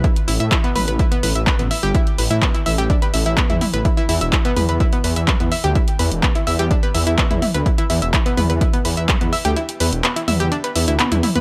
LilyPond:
<<
  \new Staff \with { instrumentName = "Synth arpeggio sound" } { \time 4/4 \key e \minor \tempo 4 = 126 e'16 r16 e'16 e''16 e'16 b16 b'16 b'16 e'16 b16 b'16 e''16 b'16 b16 e''16 g'16 | e'16 r16 b'16 e'16 b16 e'16 e''16 g'16 d'16 b'16 e''16 e'16 b16 e'16 e'16 b'16 | e'16 e'16 e'16 e''16 e'16 b16 b'16 b'16 e'16 b16 b'16 e''16 b'16 b16 e''16 g'16 | e'16 r16 b'16 r16 b16 e'16 e''16 g'16 d'16 b'16 e''16 e'16 b16 e'16 e'16 b'16 |
e'16 e'16 e'16 e''16 e'16 b16 b'16 b'16 e'16 b16 b'16 e''16 b'16 b16 e''16 g'16 | e'16 r16 b'16 r16 b16 e'16 e''16 g'16 d'16 b'16 e''16 e'16 b16 e'16 e'16 b'16 | }
  \new Staff \with { instrumentName = "Detuned saw bass" } { \clef bass \time 4/4 \key e \minor r8 a,,16 a,16 r8 a,,16 a,,16 r8 a,,16 a,,16 r16 a,,16 r16 g,,16 | r8 a,,16 a,16 r8 a,,16 a,,16 r8 a,,16 a,,16 r16 e,16 r16 a,,16 | r8 e,16 e,,16 r8 e,16 e,16 r8 e,16 e,16 r16 e,16 r16 d,16 | r8 e,16 e,,16 r8 e,16 e,16 r8 e,16 e,16 r16 e,16 r16 d,16 |
r8 e,16 e,,16 r8 e,16 e,16 r8 e,16 e,16 r16 e,16 r16 d,16 | r8 e,16 e,,16 r8 e,16 e,16 r8 e,16 d,16 r16 e,16 r16 e,16 | }
  \new DrumStaff \with { instrumentName = "Drums" } \drummode { \time 4/4 <hh bd>16 hh16 hho16 hh16 <hc hh bd>16 hh16 <hho toml>16 hh16 <hh bd>16 hh16 hho16 hh16 <hc hh bd toml>16 hh16 hho16 hh16 | <hh bd>16 hh16 hho16 hh16 <hc hh bd>16 hh16 hho16 hh16 <hh bd>16 hh16 hho16 hh16 <hc hh bd>16 <hh toml>16 <hho toml>16 hh16 | <hh bd>16 hh16 hho16 hh16 <hc hh bd>16 hh16 <hho toml>16 hh16 <hh bd>16 hh16 hho16 hh16 <hc hh bd toml>16 hh16 hho16 hh16 | <hh bd>16 hh16 hho16 hh16 <hc hh bd>16 hh16 hho16 hh16 <hh bd>16 hh16 hho16 hh16 <hc hh bd>16 <hh toml>16 <hho toml>16 hh16 |
<hh bd>16 hh16 hho16 hh16 <hc hh bd>16 hh16 <hho toml>16 hh16 <hh bd>16 hh16 hho16 hh16 <hc hh bd toml>16 hh16 hho16 hh16 | hh16 hh16 hho16 hh16 <hc hh>16 hh16 <hho toml>16 hh16 hh16 hh16 hho16 hh16 <hc hh tommh>16 <hh tommh toml>16 <hho toml>16 <hh toml>16 | }
>>